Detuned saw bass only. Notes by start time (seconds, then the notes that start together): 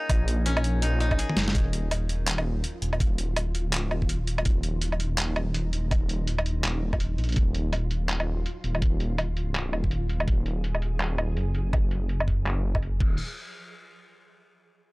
0.09 A#1
1.36 F#1
1.55 D#1
2.82 D#1
3.58 D1
3.91 D#1
4.46 D#1
5.54 D#1
6.64 D#1
7.18 A#1
7.37 D#1
8.64 D#1
9.73 D#1
10.28 D#1
11.37 F#1
12.45 F#1
13.00 D#1